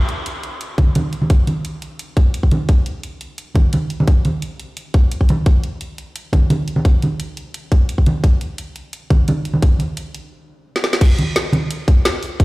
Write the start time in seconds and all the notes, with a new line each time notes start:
0.09 closed hi-hat
0.26 closed hi-hat
0.43 closed hi-hat
0.61 closed hi-hat
0.78 kick, closed hi-hat, high conga
0.95 closed hi-hat, high conga
1.13 closed hi-hat
1.22 high conga
1.30 kick, closed hi-hat
1.47 closed hi-hat, high conga
1.65 closed hi-hat
1.82 closed hi-hat
1.99 closed hi-hat
2.17 kick, closed hi-hat
2.34 closed hi-hat
2.43 kick
2.51 closed hi-hat, high conga
2.69 kick, closed hi-hat
2.86 closed hi-hat
3.03 closed hi-hat
3.21 closed hi-hat
3.38 closed hi-hat
3.55 kick, closed hi-hat, high conga
3.73 closed hi-hat, high conga
3.90 closed hi-hat
4.00 high conga
4.08 kick, closed hi-hat
4.25 closed hi-hat, high conga
4.42 closed hi-hat
4.60 closed hi-hat
4.77 closed hi-hat
4.94 kick, closed hi-hat
5.12 closed hi-hat
5.21 kick
5.29 closed hi-hat, high conga
5.46 kick, closed hi-hat
5.64 closed hi-hat
5.81 closed hi-hat
5.98 closed hi-hat
6.16 closed hi-hat
6.33 kick, closed hi-hat, high conga
6.50 closed hi-hat, high conga
6.68 closed hi-hat
6.76 high conga
6.85 kick, closed hi-hat
7.02 closed hi-hat, high conga
7.20 closed hi-hat
7.37 closed hi-hat
7.54 closed hi-hat
7.72 kick, closed hi-hat
7.89 closed hi-hat
7.98 kick
8.06 closed hi-hat, high conga
8.24 kick, closed hi-hat
8.41 closed hi-hat
8.58 closed hi-hat
8.76 closed hi-hat
8.93 closed hi-hat
9.10 kick, closed hi-hat, high conga
9.28 closed hi-hat, high conga
9.45 closed hi-hat
9.54 high conga
9.62 kick, closed hi-hat
9.79 closed hi-hat, high conga
9.97 closed hi-hat
10.15 closed hi-hat
10.76 snare
10.84 snare
10.93 snare
11.01 kick, closed hi-hat, crash
11.19 closed hi-hat, high conga
11.36 snare, closed hi-hat
11.53 closed hi-hat, high conga
11.71 closed hi-hat
11.88 kick, closed hi-hat
12.05 snare, closed hi-hat
12.23 open hi-hat
12.40 kick, closed hi-hat